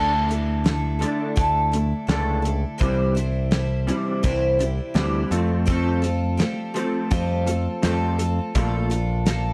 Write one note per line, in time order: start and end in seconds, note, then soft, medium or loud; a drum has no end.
0.00 1.03 D2 medium
0.00 0.26 D3 medium
0.00 0.28 D3 medium
0.00 0.27 A3 medium
0.00 0.29 A3 medium
0.00 0.27 D4 medium
0.00 0.29 D4 medium
0.00 0.29 E4 medium
0.00 0.28 A4 medium
0.28 0.61 D3 medium
0.28 0.61 A3 medium
0.28 0.64 D4 soft
0.28 0.65 E4 soft
0.28 0.65 A4 soft
0.28 closed hi-hat medium
0.64 0.97 D3 medium
0.64 1.00 A3 medium
0.64 0.98 A3 medium
0.64 1.01 D4 medium
0.64 0.99 E4 medium
0.64 0.98 A4 medium
0.64 snare loud
0.64 closed hi-hat medium
0.99 1.34 D3 medium
0.99 1.35 A3 medium
0.99 1.35 D4 loud
0.99 1.36 D4 soft
0.99 1.36 E4 soft
0.99 1.36 A4 soft
0.99 closed hi-hat medium
1.36 1.92 D2 medium
1.36 1.72 D3 medium
1.36 1.69 D3 medium
1.36 1.72 A3 medium
1.36 1.69 A3 medium
1.36 1.73 D4 medium
1.36 1.72 E4 medium
1.36 1.70 A4 medium
1.36 kick loud
1.36 closed hi-hat medium
1.72 2.05 D3 medium
1.72 2.05 A3 medium
1.72 2.07 D4 soft
1.72 2.08 E4 soft
1.72 2.08 A4 medium
1.72 closed hi-hat medium
2.07 2.63 C#2 medium
2.07 2.42 D3 medium
2.07 2.44 A3 medium
2.07 2.43 A3 medium
2.07 2.44 D4 medium
2.07 2.43 D4 medium
2.07 2.43 E4 medium
2.07 2.41 A4 medium
2.07 snare loud
2.07 closed hi-hat medium
2.42 2.77 D3 medium
2.42 2.77 A3 medium
2.42 2.78 D4 soft
2.42 2.78 E4 soft
2.42 2.79 A4 medium
2.42 closed hi-hat medium
2.78 3.90 C2 medium
2.78 3.15 C3 medium
2.78 3.14 C3 medium
2.78 3.15 E3 medium
2.78 3.14 E3 medium
2.78 3.15 G3 medium
2.78 3.15 D4 medium
2.78 3.15 E4 medium
2.78 3.14 C5 medium
2.78 kick loud
2.78 closed hi-hat medium
3.15 3.49 C3 medium
3.15 3.49 E3 medium
3.15 3.50 G3 soft
3.15 3.51 D4 soft
3.15 3.52 E4 medium
3.15 3.51 C5 medium
3.15 closed hi-hat soft
3.51 3.84 C3 medium
3.51 3.85 E3 medium
3.51 3.87 G3 medium
3.51 3.88 D4 soft
3.51 3.87 E4 medium
3.51 3.86 C5 medium
3.51 snare loud
3.51 closed hi-hat medium
3.87 4.21 C3 medium
3.87 4.22 E3 medium
3.87 4.22 G3 medium
3.87 4.23 G3 soft
3.87 4.23 D4 soft
3.87 4.24 E4 soft
3.87 4.24 C5 soft
3.87 closed hi-hat medium
4.23 4.79 C2 medium
4.23 4.59 C3 medium
4.23 4.56 C3 medium
4.23 4.60 E3 medium
4.23 4.56 E3 medium
4.23 4.60 G3 medium
4.23 4.59 D4 medium
4.23 4.58 E4 medium
4.23 4.58 C5 medium
4.23 kick loud
4.23 closed hi-hat medium
4.59 4.92 C3 medium
4.59 4.92 E3 medium
4.59 4.93 G3 soft
4.59 4.94 D4 soft
4.59 4.95 E4 soft
4.59 4.95 C5 soft
4.59 closed hi-hat medium
4.94 5.23 D2 medium
4.94 5.29 C3 medium
4.94 5.29 E3 medium
4.94 5.31 G3 medium
4.94 5.30 G3 medium
4.94 5.31 D4 medium
4.94 5.31 E4 medium
4.94 5.30 C5 medium
4.94 snare loud
4.94 closed hi-hat medium
5.31 6.41 F2 medium
5.31 5.65 F3 medium
5.31 5.65 A3 loud
5.31 5.66 C4 medium
5.31 5.65 C4 soft
5.31 5.66 F4 soft
5.31 5.66 A4 soft
5.31 closed hi-hat medium
5.66 6.02 F3 medium
5.66 6.01 F3 medium
5.66 6.03 G3 medium
5.66 6.01 A3 medium
5.66 6.03 C4 medium
5.66 6.02 C4 medium
5.66 6.02 F4 medium
5.66 6.01 A4 medium
5.66 kick medium
5.66 closed hi-hat medium
6.02 6.36 F3 medium
6.02 6.36 A3 medium
6.02 6.37 C4 soft
6.02 6.38 F4 medium
6.02 6.39 A4 medium
6.02 closed hi-hat medium
6.37 6.72 F3 medium
6.37 6.74 G3 medium
6.37 6.72 A3 medium
6.37 6.75 C4 medium
6.37 6.74 F4 medium
6.37 6.73 A4 medium
6.37 snare loud
6.37 closed hi-hat medium
6.74 7.09 F3 medium
6.74 7.09 A3 medium
6.74 7.09 C4 loud
6.74 7.10 C4 soft
6.74 7.10 F4 soft
6.74 7.11 A4 medium
6.74 closed hi-hat medium
7.11 7.66 F2 medium
7.11 7.43 F3 medium
7.11 7.47 F3 medium
7.11 7.47 G3 medium
7.11 7.43 A3 medium
7.11 7.47 C4 medium
7.11 7.46 F4 medium
7.11 7.45 A4 medium
7.11 kick loud
7.11 closed hi-hat medium
7.46 7.79 F3 medium
7.46 7.80 A3 medium
7.46 7.82 C4 soft
7.46 7.83 F4 soft
7.46 7.83 A4 medium
7.46 closed hi-hat medium
7.82 8.39 F2 medium
7.82 8.17 F3 medium
7.82 8.19 G3 medium
7.82 8.17 A3 medium
7.82 8.19 C4 medium
7.82 8.17 C4 medium
7.82 8.19 F4 medium
7.82 8.17 A4 medium
7.82 snare loud
7.82 closed hi-hat medium
8.19 8.51 F3 medium
8.19 8.52 A3 medium
8.19 8.55 C4 soft
8.19 8.54 F4 soft
8.19 8.55 A4 soft
8.19 closed hi-hat medium
8.55 9.53 A#1 loud
8.55 8.89 A#2 medium
8.55 8.89 F3 medium
8.55 8.89 A3 medium
8.55 8.91 D4 medium
8.55 8.90 F4 medium
8.55 8.89 A4 medium
8.55 kick loud
8.55 closed hi-hat medium
8.90 9.24 A#2 medium
8.90 9.24 F3 medium
8.90 9.26 D4 soft
8.90 9.26 F4 soft
8.90 9.26 A4 medium
8.90 closed hi-hat medium
9.26 9.53 A#2 medium
9.26 9.53 F3 medium
9.26 9.53 A#3 medium
9.26 9.53 D4 medium
9.26 9.53 F4 medium
9.26 9.53 A4 medium
9.26 snare loud
9.26 closed hi-hat medium